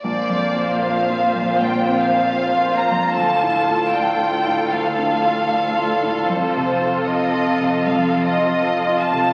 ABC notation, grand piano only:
X:1
M:4/4
L:1/8
Q:1/4=77
K:Bb
V:1 name="Grand piano"
(3B,,, F,, F (3c F F,, (3B,,, C F (3c F F,, | (3D,, A,, F (3d F A,, (3D,, D F (3d F A,, | (3F,, C, F (3c F C, (3F,, C F (3c F C, |]